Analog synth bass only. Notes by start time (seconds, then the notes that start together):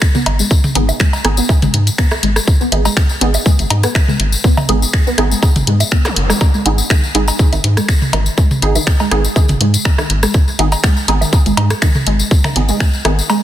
0.26 G#1
0.75 G#1
1.25 G#1
1.62 G#1
1.74 G#2
2.23 G#1
2.72 G#1
3.21 G#1
3.59 G#1
3.70 G#2
4.20 G#1
4.69 G#1
5.18 G#1
5.56 G#1
5.67 G#2
6.16 F#1
6.66 G#1
7.15 G#1
7.53 G#1
7.64 G#2
8.13 G#1
8.62 G#1
9.11 G#1
9.49 G#1
9.61 G#2
10.10 G#1
10.59 G#1
11.08 G#1
11.46 G#1
11.57 G#2
12.07 G#1
12.56 G#1
13.05 G#1